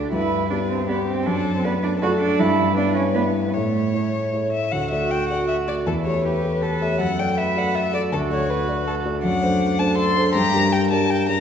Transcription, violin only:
0.13 0.48 B4 medium
0.52 0.88 B4 medium
0.88 1.25 G4 soft
1.26 1.67 A4 medium
1.65 2.01 B4 medium
2.02 2.75 A4 medium
2.76 3.55 B4 medium
3.53 4.52 C#5 medium
4.53 4.73 E5 medium
4.72 4.91 F#5 medium
4.91 5.13 E5 medium
5.11 5.29 G5 medium
5.29 5.48 F#5 medium
5.48 5.56 E5 medium
5.68 5.75 D5 medium
5.87 5.94 A4 medium
6.06 6.24 C#5 medium
6.25 6.64 B4 medium
6.63 6.84 A4 medium
6.82 7.00 E5 medium
7.01 7.21 F#5 medium
7.20 7.39 G5 medium
7.38 7.60 E5 medium
7.58 7.77 F#5 medium
7.75 7.94 E5 medium
7.94 8.02 D5 medium
8.13 8.20 A4 medium
8.32 8.51 C#5 medium
8.50 8.87 B4 medium
8.87 8.95 A4 medium
9.24 9.81 F#5 medium
9.79 9.97 A5 medium
9.98 10.34 C6 medium
10.35 10.74 A#5 medium
10.73 10.90 G5 medium
10.91 11.12 A5 medium
11.10 11.28 G5 medium
11.29 11.40 A#5 medium

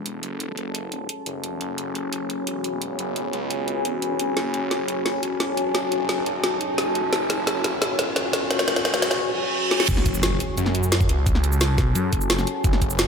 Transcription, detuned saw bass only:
0.00 0.22 E1 loud
0.23 0.56 F#1 loud
0.57 1.08 F#1 medium
1.26 1.60 F#1 medium
1.61 2.46 F#1 loud
2.47 2.97 E1 medium
2.99 3.32 F#1 loud
3.33 3.84 C#2 loud
3.85 4.35 E1 loud
4.37 5.22 F#1 loud
5.23 5.73 E1 loud
5.75 6.08 F#1 loud
6.09 6.59 F#1 medium
6.78 7.11 F#1 medium
7.13 7.97 F#1 loud
7.99 8.49 E1 loud
8.51 8.84 F#1 medium
8.85 9.20 C#2 medium
9.89 10.39 F#1 loud
10.58 11.08 F#2 loud
11.09 11.69 C#2 medium
11.69 11.94 C2 medium
11.95 12.11 F#2 loud
12.13 12.29 F#1 loud
12.30 12.46 F#1 medium
12.64 13.07 F#1 loud

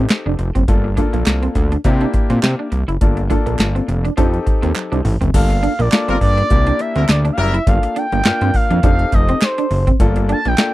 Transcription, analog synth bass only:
0.26 0.36 F1 loud
0.39 0.51 F1 medium
0.55 0.65 F#1 medium
0.68 1.02 G1 loud
1.14 1.23 A#1 loud
1.27 1.48 C2 medium
1.55 1.77 D2 medium
1.85 2.06 C3 loud
2.30 2.40 A#2 medium
2.43 2.55 C3 medium
2.72 2.84 C2 medium
2.88 2.98 F#1 medium
3.01 3.35 G1 loud
3.46 3.56 A#1 medium
3.59 3.81 G1 loud
3.88 4.10 F1 loud
4.18 4.39 F2 medium
4.63 4.73 D#2 loud
4.92 5.02 C2 medium
5.05 5.17 A1 medium
5.21 5.31 F#1 medium
5.34 5.68 G1 loud
5.79 5.89 A#1 medium
6.08 6.18 G1 medium
6.21 6.43 G2 loud
6.51 6.72 C2 medium
6.96 7.05 D2 loud
7.09 7.31 D2 medium
7.38 7.60 F#1 medium
7.67 7.79 G1 loud
8.12 8.22 G1 medium
8.26 8.32 G2 medium
8.41 8.51 G2 medium
8.71 8.80 F2 medium
8.84 9.05 F1 loud
9.13 9.34 F1 loud
9.71 9.93 F#1 medium
10.00 10.34 G1 loud
10.46 10.55 A#1 medium

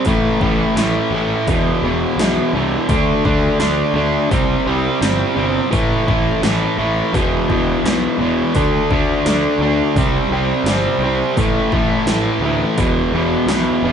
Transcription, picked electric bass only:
0.06 0.28 A1 medium
0.41 0.63 A1 medium
0.75 0.98 A1 medium
1.11 1.33 A1 medium
1.48 1.70 E1 medium
1.82 2.04 E1 medium
2.16 2.39 B1 medium
2.53 2.75 C2 medium
2.89 3.11 D2 medium
3.25 3.47 D2 medium
3.60 3.82 D2 medium
3.94 4.16 D2 medium
4.32 4.54 C2 medium
4.66 4.88 C2 medium
5.01 5.23 G1 medium
5.37 5.59 G1 medium
5.73 5.94 A1 medium
6.08 6.30 A1 medium
6.42 6.64 A1 medium
6.79 7.00 A1 medium
7.13 7.35 E1 medium
7.50 7.72 E1 medium
7.83 8.06 B1 medium
8.19 8.41 E1 medium
8.55 8.77 D2 medium
8.91 9.12 D2 medium
9.24 9.46 D2 medium
9.59 9.81 D2 medium
9.96 10.18 C2 medium
10.28 10.51 C2 medium
10.64 10.87 G1 medium
10.99 11.22 C2 medium
11.37 11.59 A1 medium
11.72 11.94 A1 medium
12.06 12.29 A1 medium
12.40 12.63 D2 medium
12.78 13.00 E1 medium
13.12 13.35 E1 medium
13.46 13.69 B1 medium
13.82 13.92 E1 medium

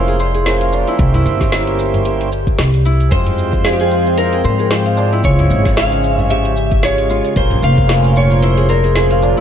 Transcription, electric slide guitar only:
3.12 3.61 C5 loud
3.65 3.73 G#4 medium
3.73 3.80 G4 medium
3.81 4.19 G#4 medium
4.18 4.73 A#4 loud
4.71 5.10 C5 loud
5.25 5.79 C#5 loud
5.78 6.14 F5 loud
6.14 6.27 E5 loud
6.31 6.80 E5 loud
6.84 7.23 C#5 loud
7.37 7.62 C5 loud
7.64 8.13 F5 loud
8.17 8.43 C#5 medium
8.43 8.70 C5 loud
8.70 8.97 A#4 medium
8.96 9.35 G#4 loud

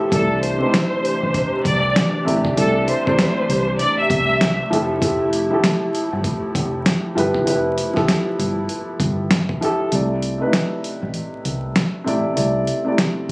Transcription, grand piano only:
0.00 0.14 F3 medium
0.00 0.14 E4 medium
0.00 0.13 G4 medium
0.00 0.14 A4 loud
0.11 0.56 C3 medium
0.11 0.57 A3 medium
0.11 0.57 E4 medium
0.11 0.58 D5 medium
0.59 1.69 C3 medium
0.59 1.70 A3 medium
0.59 0.66 D#4 medium
0.59 1.71 C5 medium
0.68 1.74 E4 medium
2.25 2.52 C3 medium
2.25 2.53 A3 medium
2.25 2.55 E4 medium
2.25 2.56 D5 medium
2.54 3.00 C3 medium
2.54 3.00 A3 medium
2.54 3.01 E4 medium
2.54 3.02 D5 medium
3.05 4.15 C3 medium
3.05 4.15 A3 medium
3.05 4.16 E4 medium
3.05 4.17 D5 medium
4.70 4.97 F3 loud
4.70 4.99 E4 medium
4.70 5.00 G4 medium
4.70 5.01 A4 loud
4.99 5.45 F3 medium
4.99 5.45 E4 medium
4.99 5.46 G4 medium
4.99 5.47 A4 medium
5.50 6.60 F3 medium
5.50 6.60 E4 medium
5.50 6.61 G4 medium
5.50 6.62 A4 medium
7.15 7.43 F3 medium
7.15 7.44 E4 medium
7.15 7.45 G4 medium
7.15 7.46 B4 loud
7.44 7.90 F3 medium
7.44 7.90 E4 medium
7.44 7.91 G4 medium
7.44 7.92 B4 medium
7.93 9.04 F3 medium
7.93 9.04 E4 medium
7.93 9.05 G4 medium
7.93 9.06 A4 medium
9.61 9.89 F3 medium
9.61 9.90 E4 medium
9.61 9.91 G4 medium
9.61 9.91 A4 loud
9.91 10.36 C3 medium
9.91 10.36 A3 medium
9.91 10.37 E4 medium
9.91 10.38 D5 medium
10.38 11.49 C3 medium
10.38 11.49 A3 medium
10.38 10.46 D#4 medium
10.38 11.50 B4 medium
10.47 11.53 E4 medium
12.04 12.32 C3 medium
12.04 12.33 A3 medium
12.04 12.34 E4 medium
12.04 12.35 D5 medium
12.33 12.79 C3 medium
12.33 12.80 A3 medium
12.33 12.80 E4 medium
12.33 12.81 D5 medium
12.84 13.32 C3 medium
12.84 13.32 A3 medium
12.84 13.32 E4 medium
12.84 13.32 D5 medium

